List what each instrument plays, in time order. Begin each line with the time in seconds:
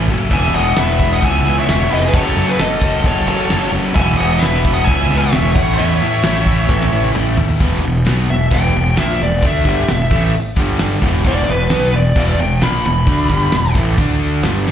Already playing: overdriven electric guitar E3
0.08 fingered electric bass F#1, overdriven electric guitar A3 C#4 E4, kick, crash
0.31 fingered electric bass E1, distorted electric guitar E2 B2, overdriven electric guitar E3 G#3 B3 E4, lead electric guitar E5 G#5, kick, crash
0.53 fingered electric bass E1, overdriven electric guitar G#3 B3 E4, lead electric guitar D#5 F#5, crash
0.76 fingered electric bass E1, overdriven electric guitar E3 G#3 B3, lead electric guitar B4 E5, snare, crash
0.80 overdriven electric guitar E4
0.99 distorted electric guitar E2 B2 E3 G#3 B3 E4, kick, crash
1.13 lead electric guitar D#5 F#5
1.22 fingered electric bass C#2, lead electric guitar E5 G#5, kick, crash
1.45 fingered electric bass C#2, overdriven electric guitar G#3 B3 E4, crash
1.59 lead electric guitar C#5 E5
1.68 fingered electric bass E1, overdriven electric guitar E3 G#3 B3 E4, snare, crash
1.90 fingered electric bass F1, overdriven electric guitar B3 E4, lead electric guitar B4 D#5, crash
1.95 overdriven electric guitar G#3
2.05 lead electric guitar G#4 B4
2.13 fingered electric bass F#1, distorted electric guitar F#2 C#3, overdriven electric guitar F#3 A3 C#4, lead electric guitar A4 C#5, kick, crash
2.18 overdriven electric guitar F#4
2.37 fingered electric bass F#2, overdriven electric guitar C#4 F#4, crash
2.41 overdriven electric guitar A3
2.48 lead electric guitar G#4 B4
2.58 fingered electric bass F#1, overdriven electric guitar F#3 A3 C#4 F#4, lead electric guitar A4 D#5, snare, crash
2.81 distorted electric guitar F#2 C#3 F#3 A3 C#4 F#4, kick, crash
3.04 fingered electric bass F#1, lead electric guitar A4 C#5, kick, crash
3.27 fingered electric bass F#1, overdriven electric guitar A3 C#4 F#4, lead electric guitar A4 C#5, crash
3.50 fingered electric bass F#1, overdriven electric guitar F#3 A3 C#4, snare, crash
3.54 overdriven electric guitar F#4
3.73 fingered electric bass F#1, overdriven electric guitar A3 C#4 F#4, crash
3.95 fingered electric bass E1, distorted electric guitar E2 B2, overdriven electric guitar E3 G#3 B3 E4, lead electric guitar E5 G#5, kick, crash
4.17 fingered electric bass E1, overdriven electric guitar B3 E4, lead electric guitar D#5 F#5, crash
4.22 overdriven electric guitar G#3
4.39 fingered electric bass E1, overdriven electric guitar E3 G#3, lead electric guitar B4 E5, snare, crash
4.43 overdriven electric guitar B3 E4
4.64 distorted electric guitar E2 B2 E3 G#3 B3 E4, kick, crash
4.73 lead electric guitar D#5 F#5
4.84 fingered electric bass C#2, lead electric guitar E5 G#5, kick, crash
5.08 fingered electric bass C#2, overdriven electric guitar G#3 B3 E4, crash
5.18 lead electric guitar C#5 E5, snare
5.32 fingered electric bass E1, overdriven electric guitar E3 G#3 B3 E4, snare, crash
5.53 fingered electric bass A1, distorted electric guitar A2, overdriven electric guitar C#4 E4, lead electric guitar C#5 F#5, kick, crash
5.58 overdriven electric guitar A2 E3 A3
5.75 overdriven electric guitar A2, lead electric guitar C#5 E5, crash
5.79 fingered electric bass E2, overdriven electric guitar E3 A3 C#4 E4
6.00 fingered electric bass A2, overdriven electric guitar A3 C#4 E4, crash
6.23 fingered electric bass A1, overdriven electric guitar A2 E3 A3 C#4 E4, snare, crash
6.46 kick, crash
6.69 fingered electric bass A1, kick, snare
6.81 snare
6.92 fingered electric bass A1, overdriven electric guitar A3 C#4 E4
7.04 high tom
7.14 fingered electric bass A1, overdriven electric guitar E3 A3 C#4 E4, mid tom
7.37 fingered electric bass D#2, overdriven electric guitar A3 C#4 E4, floor tom
7.49 floor tom
7.59 fingered electric bass E1, overdriven electric guitar E2 B2 E3, kick, open hi-hat
7.83 fingered electric bass E1, overdriven electric guitar E2 B2
8.05 fingered electric bass B1, overdriven electric guitar B2 F#3 B3, snare, open hi-hat
8.29 fingered electric bass E1, overdriven electric guitar E2 B2, lead electric guitar E5
8.50 fingered electric bass E1, overdriven electric guitar E2 B2 E3, lead electric guitar G5, kick, open hi-hat
8.74 fingered electric bass E1, overdriven electric guitar E2 B2
8.96 fingered electric bass A#1, overdriven electric guitar A#2 F3 A#3, lead electric guitar E5, snare, open hi-hat
9.19 fingered electric bass E1, overdriven electric guitar E2 B2, lead electric guitar D5
9.42 fingered electric bass D2, overdriven electric guitar D3 A3 D4, kick, open hi-hat
9.46 lead electric guitar E5
9.65 fingered electric bass G1, overdriven electric guitar G2 D3 G3, kick
9.87 fingered electric bass E1, overdriven electric guitar E2 B2, snare, open hi-hat
10.10 fingered electric bass A1, overdriven electric guitar A2 E3 A3, kick
10.33 muted overdriven electric guitar stroke, muted distorted electric guitar stroke, muted fingered electric bass stroke, open hi-hat
10.57 fingered electric bass G1, overdriven electric guitar G2 D3 G3, kick
10.79 snare, open hi-hat
11.01 fingered electric bass E1, overdriven electric guitar E2 B2 E3, kick
11.24 fingered electric bass E1, overdriven electric guitar E2 B2 E3, lead electric guitar D5, kick, crash
11.48 fingered electric bass E1, overdriven electric guitar E2 B2, lead electric guitar B4
11.70 fingered electric bass B1, overdriven electric guitar B2 F#3 B3, snare, open hi-hat
11.83 snare
11.93 fingered electric bass E1, overdriven electric guitar E2 B2, lead electric guitar D5
12.16 fingered electric bass E1, overdriven electric guitar E2 B2 E3, kick, open hi-hat
12.38 fingered electric bass E1, overdriven electric guitar E2 B2, lead electric guitar G5
12.61 fingered electric bass A#1, overdriven electric guitar A#2 F3 A#3, lead electric guitar B5, snare, open hi-hat
12.84 fingered electric bass E1, overdriven electric guitar E2 B2, lead electric guitar B5
13.07 fingered electric bass D2, overdriven electric guitar D3 A3 D4, kick, open hi-hat
13.30 fingered electric bass G1, overdriven electric guitar G2 D3 G3, kick
13.52 fingered electric bass E1, overdriven electric guitar E2 B2, snare, open hi-hat
13.75 fingered electric bass A1, overdriven electric guitar A2 E3 A3, kick
13.97 fingered electric bass D2, overdriven electric guitar D3 A3 D4, kick, open hi-hat
14.43 fingered electric bass G1, overdriven electric guitar G2 D3 G3, snare, open hi-hat
14.67 snare